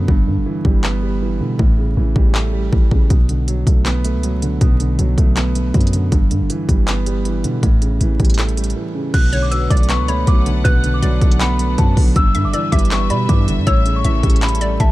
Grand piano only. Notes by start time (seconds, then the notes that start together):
Already playing: B2 D3 F#3 A3 B3
0.08 G2
0.27 D3
0.46 E3
0.65 G3
0.84 B3
1.02 G3
1.22 E3
1.40 D3
1.59 A2
1.78 C#3
1.97 E3
2.16 G3
2.35 A3
2.53 G3
2.72 E3
2.91 C#3
3.10 B2
3.29 D3
3.48 F#3
3.67 A3
3.85 B3
4.05 A3
4.24 F#3
4.42 D3
4.62 B2
4.80 D3
4.99 F#3
5.17 A3
5.37 B3
5.56 A3
5.74 F#3
5.93 D3
6.12 G2
6.31 D3
6.50 E3
6.69 G3
6.88 B3
7.06 G3
7.26 E3
7.44 D3
7.62 A2
7.82 C#3
8.01 E3
8.19 G3
8.38 A3
8.57 G3
8.76 E3
8.95 C#3
9.14 B2
9.33 D3
9.52 F#3
9.71 A3
9.89 B3
10.08 A3
10.27 F#3
10.46 D3
10.66 B2
10.84 D3
11.03 F#3
11.21 A3
11.40 B3
11.59 A3
11.78 F#3
11.97 D3
12.16 G2
12.35 D3
12.54 E3
12.72 G3
12.92 B3
13.10 G3
13.30 E3
13.48 D3
13.66 A2
13.86 C#3
14.05 E3
14.23 G3
14.42 A3
14.61 G3
14.80 E3